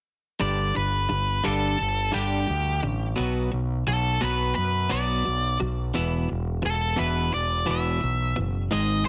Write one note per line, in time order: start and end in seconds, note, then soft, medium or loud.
0.39 0.71 G1 medium
0.39 0.73 G2 medium
0.39 0.73 D3 medium
0.39 0.73 G3 medium
0.39 0.76 D5 medium
0.74 1.06 G1 medium
0.74 1.06 G2 soft
0.74 1.06 D3 medium
0.74 1.47 B4 medium
1.09 1.40 G1 medium
1.09 1.41 G2 medium
1.09 1.41 D3 medium
1.44 1.75 G1 medium
1.44 1.77 G2 medium
1.44 1.77 D3 medium
1.44 1.77 G3 medium
1.44 2.10 A4 medium
1.79 2.10 G1 medium
1.79 2.10 D3 medium
2.12 2.45 G1 medium
2.12 2.46 G2 medium
2.12 2.46 D3 medium
2.12 2.47 G3 medium
2.12 2.79 G4 medium
2.47 2.79 D2 medium
2.47 2.79 G2 medium
2.47 2.80 D3 medium
2.83 3.14 A1 medium
2.83 3.14 G2 soft
2.83 3.15 D3 medium
3.16 3.48 B1 medium
3.16 3.50 B2 medium
3.16 3.50 F#3 medium
3.16 3.50 B3 medium
3.52 3.83 B1 medium
3.52 3.83 B2 medium
3.52 3.83 F#3 medium
3.87 4.17 B1 medium
3.87 4.18 B2 medium
3.87 4.18 F#3 medium
3.87 4.23 A4 medium
4.21 4.52 B1 medium
4.21 4.54 B2 medium
4.21 4.55 F#3 medium
4.21 4.55 B3 medium
4.21 4.54 B4 medium
4.55 4.87 F#2 medium
4.55 4.87 B2 medium
4.55 4.87 F#3 medium
4.55 4.91 B4 medium
4.90 5.22 B1 medium
4.90 5.23 B2 medium
4.90 5.24 F#3 medium
4.90 5.24 B3 medium
4.90 5.57 D5 medium
5.25 5.57 B1 medium
5.25 5.57 B2 medium
5.25 5.57 F#3 medium
5.60 5.91 B1 medium
5.60 5.92 B2 medium
5.60 5.92 F#3 medium
5.94 6.26 E1 medium
5.94 6.27 E2 medium
5.94 6.28 B2 medium
5.94 6.28 E3 medium
6.29 6.61 E1 medium
6.29 6.61 E2 medium
6.29 6.61 B2 medium
6.62 6.95 E1 medium
6.62 6.95 E2 medium
6.62 6.95 B2 medium
6.62 6.98 A4 medium
6.96 7.30 E1 medium
6.96 7.31 E2 medium
6.96 7.31 B2 medium
6.96 7.31 E3 medium
6.96 7.33 B4 medium
7.32 7.64 E1 medium
7.32 7.64 E2 medium
7.32 7.64 B2 medium
7.32 7.70 D5 medium
7.66 7.99 E1 medium
7.66 7.99 E2 medium
7.66 8.00 B2 medium
7.66 8.01 E3 medium
7.71 8.35 E5 medium
8.01 8.33 B1 medium
8.01 8.33 E2 medium
8.01 8.34 B2 medium
8.36 8.68 F#1 medium
8.36 8.68 E2 medium
8.36 8.68 B2 medium
8.71 9.03 G#1 medium
8.71 9.04 G#2 medium
8.71 9.05 D#3 medium
8.71 9.05 G#3 medium
8.71 9.05 D#5 medium